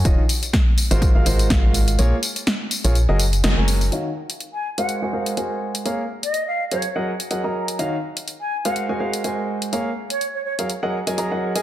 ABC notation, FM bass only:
X:1
M:4/4
L:1/16
Q:"Swing 16ths" 1/4=124
K:Ebm
V:1 name="FM bass" clef=bass
E,,, z6 A,,,2 A,,, A,,,2 A,,,4 | B,,, z6 B,,,2 G,,,3 G,,, G,,,3 | z16 | z16 |
z16 | z16 |]